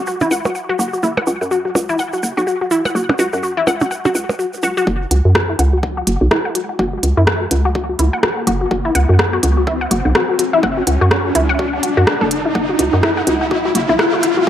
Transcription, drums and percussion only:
0.06 shaker soft
0.21 percussion blips medium
0.21 shaker soft
0.31 shaker medium
0.45 percussion blips medium
0.45 shaker soft
0.55 shaker soft
0.79 shaker medium
0.93 shaker soft
1.03 shaker medium
1.17 percussion blips medium
1.27 shaker medium
1.42 shaker soft
1.51 shaker soft
1.75 percussion blips medium
1.75 shaker medium
1.89 shaker soft
1.99 shaker soft
2.13 shaker soft
2.23 shaker medium
2.38 shaker soft
2.47 shaker soft
2.71 shaker medium
2.85 percussion blips soft
2.85 shaker soft
2.96 shaker medium
3.09 percussion blips medium
3.19 shaker medium
3.33 shaker soft
3.43 shaker soft
3.67 percussion blips medium
3.67 shaker medium
3.81 percussion blips medium
3.81 shaker soft
3.91 shaker soft
4.05 percussion blips medium
4.05 shaker soft
4.15 shaker medium
4.29 percussion blips medium
4.29 shaker soft
4.39 shaker soft
4.54 shaker soft
4.63 shaker medium
4.77 shaker soft
4.87 kick loud
5.11 closed hi-hat medium
5.35 kick loud
5.35 cross-stick medium
5.59 closed hi-hat medium
5.83 kick loud
6.07 closed hi-hat medium
6.31 kick loud
6.31 cross-stick medium
6.55 closed hi-hat medium
6.79 kick loud
7.03 closed hi-hat medium
7.27 kick loud
7.27 cross-stick medium
7.51 closed hi-hat medium
7.75 kick loud
7.99 closed hi-hat medium
8.23 kick loud
8.23 cross-stick medium
8.47 closed hi-hat medium
8.71 kick loud
8.95 closed hi-hat loud
9.19 kick loud
9.19 cross-stick medium
9.43 closed hi-hat loud
9.67 kick loud
9.91 closed hi-hat loud
10.15 kick loud
10.15 cross-stick medium
10.39 closed hi-hat medium
10.63 kick loud
10.87 closed hi-hat medium
11.11 kick loud
11.11 cross-stick medium
11.35 closed hi-hat loud
11.59 kick loud
11.83 closed hi-hat medium
12.07 kick loud
12.07 cross-stick medium
12.31 closed hi-hat medium
12.55 kick loud
12.79 closed hi-hat medium
13.03 kick loud
13.03 cross-stick medium
13.27 closed hi-hat medium
13.51 kick loud
13.75 closed hi-hat medium
13.99 kick loud
13.99 cross-stick medium
14.23 closed hi-hat medium

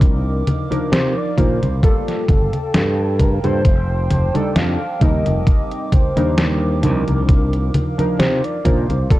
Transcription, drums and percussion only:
0.01 kick loud
0.01 closed hi-hat medium
0.01 high conga soft
0.47 closed hi-hat medium
0.47 high conga medium
0.72 closed hi-hat soft
0.72 high conga soft
0.93 snare loud
0.93 closed hi-hat medium
0.93 high conga soft
1.38 kick medium
1.38 closed hi-hat medium
1.38 high conga medium
1.63 closed hi-hat soft
1.63 high conga soft
1.83 kick loud
1.83 closed hi-hat medium
1.83 high conga soft
2.08 snare soft
2.08 closed hi-hat soft
2.28 kick loud
2.28 closed hi-hat medium
2.28 high conga medium
2.53 closed hi-hat medium
2.53 high conga soft
2.74 snare loud
2.74 closed hi-hat medium
2.74 high conga soft
3.19 kick medium
3.19 closed hi-hat medium
3.19 high conga medium
3.44 closed hi-hat soft
3.44 high conga soft
3.65 kick loud
3.65 closed hi-hat medium
3.65 high conga soft
4.10 closed hi-hat medium
4.10 high conga medium
4.35 closed hi-hat medium
4.35 high conga soft
4.56 snare loud
4.56 closed hi-hat medium
4.56 high conga soft
5.01 kick medium
5.01 closed hi-hat medium
5.01 high conga medium
5.26 closed hi-hat soft
5.26 high conga soft
5.47 kick loud
5.47 closed hi-hat medium
5.47 high conga soft
5.71 closed hi-hat soft
5.92 kick loud
5.92 closed hi-hat medium
5.92 high conga medium
6.17 closed hi-hat medium
6.17 high conga soft
6.38 snare loud
6.38 closed hi-hat medium
6.38 high conga soft
6.83 closed hi-hat medium
6.83 high conga medium
7.08 closed hi-hat soft
7.08 high conga soft
7.29 kick loud
7.29 closed hi-hat medium
7.29 high conga soft
7.53 closed hi-hat soft
7.74 closed hi-hat medium
7.74 high conga medium
7.99 closed hi-hat medium
7.99 high conga soft
8.20 snare loud
8.20 closed hi-hat medium
8.20 high conga soft
8.44 closed hi-hat soft
8.65 kick medium
8.65 closed hi-hat medium
8.65 high conga medium
8.90 closed hi-hat medium
8.90 high conga soft
9.11 kick loud
9.11 closed hi-hat medium
9.11 high conga soft

